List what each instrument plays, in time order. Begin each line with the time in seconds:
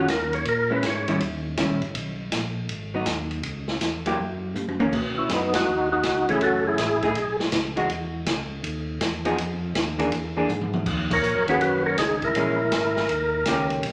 0.08 tonewheel organ D#2 A#4, kick, snare, hi-hat pedal, ride
0.33 tonewheel organ C#5, ride
0.45 tonewheel organ A#2 A#4, kick, ride
0.70 hollow-body jazz guitar G#3 C#4 E4, tonewheel organ B4
0.83 tonewheel organ G#2 C#5, kick, snare, hi-hat pedal, ride
1.08 hollow-body jazz guitar D#3 G3 C#4 E4, ride
1.20 tonewheel organ D#2, kick, ride
1.57 tonewheel organ C#2, hollow-body jazz guitar D#3 G3 C#4 E4, kick, snare, hi-hat pedal, ride
1.70 tonewheel organ A#1
1.82 tonewheel organ G1, ride
1.94 tonewheel organ B1, kick, ride
2.32 tonewheel organ A#1, kick, snare, hi-hat pedal, ride
2.69 tonewheel organ G#1, kick, ride
2.94 hollow-body jazz guitar F#3 B3 D#4
3.06 tonewheel organ D#2, kick, snare, hi-hat pedal, ride
3.31 ride
3.43 tonewheel organ C#2, kick, ride
3.68 snare
3.81 tonewheel organ E2, kick, snare, hi-hat pedal, ride
4.06 hollow-body jazz guitar F#3 A#3 E4 G4, ride
4.18 tonewheel organ F#2, kick
4.54 tonewheel organ G2, hi-hat pedal, high tom
4.68 tonewheel organ F#2, high tom
4.79 tonewheel organ E2, hollow-body jazz guitar D#3 A#3 C#4, high tom
4.92 tonewheel organ B2, kick, crash
5.18 tonewheel organ C#4 E4
5.29 tonewheel organ F#2 B3 D#4, kick, snare, hi-hat pedal, ride
5.54 tonewheel organ D#4 F#4, snare, ride
5.68 tonewheel organ D#2
5.92 tonewheel organ D#4 F#4
6.03 tonewheel organ C#2, kick, snare, hi-hat pedal, ride
6.29 hollow-body jazz guitar E3 A3 C#4, tonewheel organ E4 G#4, ride
6.41 tonewheel organ F#1 F#4 A4, kick, ride
6.67 tonewheel organ E4 G#4
6.78 tonewheel organ A1, kick, snare, hi-hat pedal, ride
7.02 hollow-body jazz guitar A3 D#4 G#4, kick, ride
7.15 tonewheel organ B1, kick, ride
7.40 snare
7.52 tonewheel organ C#2, kick, snare, hi-hat pedal, ride
7.76 hollow-body jazz guitar E3 G#3 D#4 F#4, ride
7.89 tonewheel organ E2, kick, ride
8.26 tonewheel organ C#2, kick, snare, hi-hat pedal, ride
8.63 tonewheel organ D#2, kick, ride
9.01 tonewheel organ E2, kick, snare, hi-hat pedal, ride
9.25 hollow-body jazz guitar F3 B3 D#4 G#4, ride
9.38 tonewheel organ F2, kick, ride
9.75 tonewheel organ D#2, kick, snare, hi-hat pedal, ride
9.98 hollow-body jazz guitar E3 A#3 D4 G#4, ride
10.12 tonewheel organ E2, kick, ride
10.37 hollow-body jazz guitar E3 A#3 D4 G#4
10.48 tonewheel organ G#2, hi-hat pedal, mid tom
10.61 mid tom
10.73 mid tom
10.86 tonewheel organ D#2, kick, crash
11.11 tonewheel organ A#4 C#5, kick, crash
11.22 tonewheel organ A#2, hi-hat pedal
11.35 tonewheel organ F#2
11.47 tonewheel organ D#2 G#4 B4, hollow-body jazz guitar D#3 A#3 C#4 F#4, ride
11.60 tonewheel organ F#2 F#4 B4, kick, ride
11.86 tonewheel organ A#4 C#5
11.97 tonewheel organ C#2 D#4 G#4, kick, snare, hi-hat pedal, ride
12.22 tonewheel organ E4 A#4, kick, ride
12.35 tonewheel organ A#1, hollow-body jazz guitar E3 G#3 C#4, kick, ride
12.72 tonewheel organ G#1, kick, snare, hi-hat pedal, ride
12.97 snare
13.09 tonewheel organ D#2, kick, ride
13.46 tonewheel organ C#2, hollow-body jazz guitar D#3 A#3 C#4 G4, kick, snare, hi-hat pedal, ride
13.70 ride
13.83 tonewheel organ B1, kick, ride